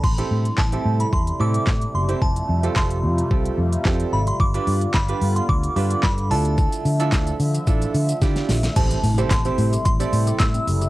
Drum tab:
CC |x---------------|----------------|----------------|----------------|
HH |-x-x-x-x-x-x-x-x|-x-x-x-x-x-x-x-x|-xox-xox-xox-xox|-xox-xox-xox-xox|
SH |----------------|----------------|----------------|xxxxxxxxxxxxxxxx|
CP |----x-------x---|----x-------x---|----x-------x---|----x-----------|
SD |----o-------o---|----o-------o---|----o-------o---|----o-------oooo|
BD |o---o---o---o---|o---o---o---o---|o---o---o---o---|o---o---o---o---|

CC |x---------------|
HH |xxoxxxoxxxoxxxox|
SH |xxxxxxxxxxxxxxxx|
CP |----x-------x---|
SD |----o-------o---|
BD |o---o---o---o---|